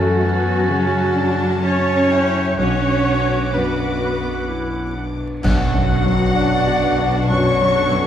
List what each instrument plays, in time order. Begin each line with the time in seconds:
Already playing: grand piano F#2, double bass section F#2, harp F#2, cello section F#3, violin section A3 A5, clarinet C#4, viola section F#4, oboe A5
0.24 harp A3, violin section B3
0.68 grand piano C#3, violin section C#4
1.15 violin section D4, harp A4
1.62 clarinet C#4, cello section C#4, violin section C#4, harp C#5, viola section C#5, oboe A5
2.10 violin section E4, harp A4, oboe G5
2.57 double bass section B1, grand piano B1, harp B2, cello section C#4, clarinet D4, violin section F#4 D6, viola section C#5, oboe F#5
3.06 harp B3
3.52 grand piano F#2, cello section B3, clarinet D4, harp D4, viola section B4, oboe F#5
4.00 clarinet F#4, harp B4
4.48 clarinet E4
4.95 clarinet D4, harp B4
5.43 double bass section B1, grand piano B1, harp B2, cello section B2, french horn section F#3, violin section D4 F#4 F#5, clarinet D4, flute section F#4, oboe F#5, concert bass drum, crash
5.74 grand piano F#2
5.89 harp B3, clarinet D4, oboe F#5
6.06 grand piano F#3
6.35 harp D4, grand piano D4, clarinet D4, viola section D5, oboe F#5
6.67 grand piano F#4
6.81 clarinet D4, harp B4, oboe F#5
6.99 grand piano D4
7.30 grand piano F#2, clarinet D4, viola section F#4, french horn section C#5, flute section C#5, oboe F#5, violin section C#6
7.61 grand piano F#3
7.75 clarinet D4, viola section A4, harp B4, oboe F#5
7.91 grand piano F#2